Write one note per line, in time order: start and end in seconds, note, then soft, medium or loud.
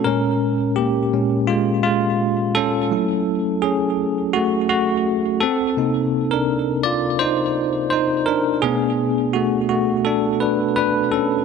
0.04 0.54 A#2 medium
0.04 0.55 G#3 soft
0.04 0.74 C#4 medium
0.04 0.79 A#4 loud
0.76 1.45 A#3 medium
0.76 1.50 G4 medium
1.13 1.45 A#2 soft
1.13 1.45 G#3 soft
1.13 1.46 C#4 medium
1.47 1.83 G#3 medium
1.47 1.81 F4 medium
1.83 2.52 G#3 medium
1.83 2.58 F4 medium
2.55 3.60 C#4 medium
2.55 3.66 A4 loud
2.91 3.95 F#3 medium
2.91 3.95 A3 medium
2.91 3.95 E4 medium
3.62 4.31 C#4 medium
3.62 4.36 G#4 medium
4.33 4.52 A3 medium
4.33 4.50 F#4 medium
4.69 5.38 A3 medium
4.69 5.43 F#4 medium
5.40 6.29 C4 medium
5.40 6.28 A4 loud
5.77 6.80 C3 medium
5.77 6.81 A#3 soft
5.77 6.81 D#4 medium
6.31 6.81 D4 medium
6.31 6.85 A#4 medium
6.83 7.01 F4 medium
6.83 7.00 D5 loud
7.19 7.88 D#4 medium
7.19 7.89 C5 loud
7.90 8.25 D#4 medium
7.90 8.28 C5 medium
8.26 8.61 D4 medium
8.26 8.63 A#4 medium
8.62 9.12 B2 medium
8.62 9.12 A3 soft
8.62 9.31 B3 medium
8.62 9.12 D4 medium
8.62 9.36 G#4 loud
9.33 9.68 A3 medium
9.33 9.68 F#4 medium
9.69 9.87 A3 medium
9.69 9.85 F#4 medium
10.05 10.40 D4 medium
10.05 10.42 A4 medium
10.40 10.75 D4 medium
10.40 10.75 B4 medium
10.76 11.11 D4 medium
10.76 11.10 B4 medium
11.11 11.45 C#4 medium
11.11 11.45 A4 medium